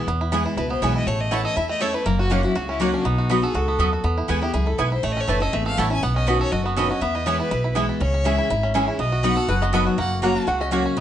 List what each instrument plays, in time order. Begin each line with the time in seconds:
0.07 upright bass E2, steel-string acoustic guitar E2, five-string banjo B3
0.21 five-string banjo E4
0.32 steel-string acoustic guitar E3 G#3 B3 E4, mandolin B3 E4 B4 G#5, five-string banjo E4
0.46 five-string banjo E4
0.57 upright bass C#2, steel-string acoustic guitar B2, five-string banjo E4, fiddle B4
0.70 five-string banjo B3, fiddle C5
0.82 upright bass B1, steel-string acoustic guitar E3 G#3 B3 E4, mandolin B3 E4 B4 G#5, five-string banjo E4, fiddle C#5
0.95 five-string banjo E4, fiddle D#5
1.06 upright bass A1, steel-string acoustic guitar A2, five-string banjo A3, fiddle C#5
1.20 fiddle D#5
1.31 steel-string acoustic guitar E3 A3 C#4 E4, mandolin A3 E4 C#5 A5, five-string banjo E4, fiddle F#5
1.44 five-string banjo A4, fiddle D#5
1.56 upright bass E2, steel-string acoustic guitar E2, five-string banjo E4, fiddle E5
1.69 five-string banjo A3, fiddle D#5
1.80 steel-string acoustic guitar E3 A3 C#4 E4, mandolin A3 E4 C#5 A5, five-string banjo A4, fiddle C#5
1.94 five-string banjo E4, fiddle B4
2.06 upright bass F#1, steel-string acoustic guitar F#2, five-string banjo A#3, fiddle A#4
2.19 fiddle F#4, five-string banjo F#4
2.30 steel-string acoustic guitar F#3 A#3 C#4 F#4, mandolin A#3 F#4 C#5 F#5, five-string banjo A#3, fiddle D#4
2.43 steel-string acoustic guitar C#4 F#4, fiddle E4, five-string banjo F#4
2.55 upright bass C#2, steel-string acoustic guitar C#3, five-string banjo F#4, fiddle F#4
2.69 five-string banjo C#4, fiddle E4
2.80 steel-string acoustic guitar F#3 A#3 C#4 F#4, mandolin A#3 F#4 C#5 F#5, fiddle D#4, five-string banjo F#4
2.94 five-string banjo C#4, fiddle D4
3.04 upright bass B1, steel-string acoustic guitar B2, five-string banjo B3, fiddle D#4
3.18 five-string banjo F#4
3.29 steel-string acoustic guitar F#3 B3 D#4 F#4, mandolin B3 F#4 D#5 B5, five-string banjo B3
3.42 steel-string acoustic guitar D#4 F#4, fiddle G#4, five-string banjo A4
3.54 upright bass C#2, steel-string acoustic guitar G#2, five-string banjo F#4, fiddle A4
3.68 five-string banjo B3
3.78 upright bass D#2, steel-string acoustic guitar F#2, mandolin B3 F#4 D#5 B5, five-string banjo A4
3.93 five-string banjo F#4
4.04 upright bass E2, steel-string acoustic guitar E2, five-string banjo B3
4.18 five-string banjo E4
4.28 upright bass D#2, steel-string acoustic guitar E3 G#3 B3 E4, mandolin B3 E4 B4 G#5, five-string banjo B3
4.42 steel-string acoustic guitar B3 E4, five-string banjo E4, fiddle G4
4.53 upright bass C#2, steel-string acoustic guitar F#2, five-string banjo E4, fiddle G#4
4.66 five-string banjo E4, fiddle A4
4.78 upright bass B1, steel-string acoustic guitar G#2, mandolin B3 E4 B4 G#5, five-string banjo E4, fiddle B4
4.92 five-string banjo E4, fiddle C5
5.03 upright bass A1, steel-string acoustic guitar A2, five-string banjo A3, fiddle C#5
5.12 fiddle D#5
5.17 five-string banjo C#4, fiddle C#5
5.27 upright bass F#1, steel-string acoustic guitar E3 A3 C#4 E4, mandolin A3 E4 C#5 A5, five-string banjo E4, fiddle B4
5.40 steel-string acoustic guitar C#4 E4, five-string banjo A4, fiddle D#5
5.53 upright bass G#1, steel-string acoustic guitar E2, five-string banjo A3, fiddle E5
5.66 five-string banjo A4, fiddle F5
5.77 upright bass A1, steel-string acoustic guitar E3 A3 C#4 E4, mandolin A3 E4 C#5 A5, five-string banjo C#4, fiddle F#5
5.90 steel-string acoustic guitar C#4 E4, five-string banjo E4, fiddle G#5
6.03 upright bass B1, steel-string acoustic guitar B2, five-string banjo B3, fiddle F#5
6.16 five-string banjo C#4, fiddle D#5
6.27 steel-string acoustic guitar B2 D#3 C#4 F#4, mandolin C#4 F#4 D#5 B5, five-string banjo F#4, fiddle B4
6.41 five-string banjo A4, fiddle C#5
6.52 upright bass F#1, steel-string acoustic guitar F#2, five-string banjo F#4, fiddle D#5
6.65 five-string banjo B3, fiddle F#4
6.77 steel-string acoustic guitar B2 D#3 C#4 F#4, mandolin C#4 F#4 D#5 B5, five-string banjo A4, fiddle B4
6.89 steel-string acoustic guitar C#4 F#4, five-string banjo F#4, fiddle D#5
7.01 upright bass E2, steel-string acoustic guitar E2, five-string banjo B3, fiddle E5
7.15 five-string banjo E4, fiddle D#5
7.26 steel-string acoustic guitar E3 G#3 B3 E4, mandolin B3 E4 B4 G#5, five-string banjo B3, fiddle C#5
7.40 five-string banjo E4, fiddle B4
7.51 upright bass B1, steel-string acoustic guitar B2, five-string banjo E4
7.64 five-string banjo E4
7.75 steel-string acoustic guitar E3 G#3 B3 E4, mandolin B3 E4 B4 G#5, five-string banjo E4
7.89 five-string banjo E4
8.00 upright bass C#2, steel-string acoustic guitar C#3, five-string banjo C#4, fiddle C#5
8.14 five-string banjo C#4
8.24 steel-string acoustic guitar E3 G#3 C#4 E4, mandolin C#4 G#4 E5 G#5, five-string banjo E4, fiddle E5
8.38 five-string banjo E4
8.50 upright bass G#1, steel-string acoustic guitar G#2, five-string banjo E4
8.63 five-string banjo C#4
8.74 steel-string acoustic guitar E3 G#3 C#4 E4, mandolin C#4 G#4 E5 G#5, five-string banjo E4
8.88 five-string banjo E4
8.99 upright bass B1, steel-string acoustic guitar B2, five-string banjo B3, fiddle D#5
9.12 five-string banjo F#4
9.23 steel-string acoustic guitar F#3 B3 D#4 F#4, mandolin B3 F#4 D#5 B5, five-string banjo B3, fiddle F#5
9.37 steel-string acoustic guitar D#4 F#4, five-string banjo A4
9.48 upright bass F#1, steel-string acoustic guitar F#2, five-string banjo F#4, resonator guitar played with a steel bar B4
9.62 five-string banjo B3, resonator guitar played with a steel bar D#5
9.73 steel-string acoustic guitar F#3 B3 D#4 F#4, mandolin B3 F#4 D#5 B5, five-string banjo A4, resonator guitar played with a steel bar B4
9.87 five-string banjo F#4
9.98 upright bass F#1, steel-string acoustic guitar F#2, five-string banjo A#3, fiddle F#5
10.22 steel-string acoustic guitar F#3 A#3 C#4 F#4, mandolin A#3 F#4 C#5 F#5, five-string banjo A#3, fiddle A#5
10.36 five-string banjo F#4
10.47 upright bass C#2, steel-string acoustic guitar C#3, five-string banjo F#4, resonator guitar played with a steel bar F#5
10.61 five-string banjo C#4, resonator guitar played with a steel bar D#5
10.71 steel-string acoustic guitar F#3 A#3 C#4 F#4, mandolin A#3 F#4 C#5 F#5, five-string banjo F#4, resonator guitar played with a steel bar C#5
10.86 five-string banjo C#4
10.97 upright bass B1, steel-string acoustic guitar B2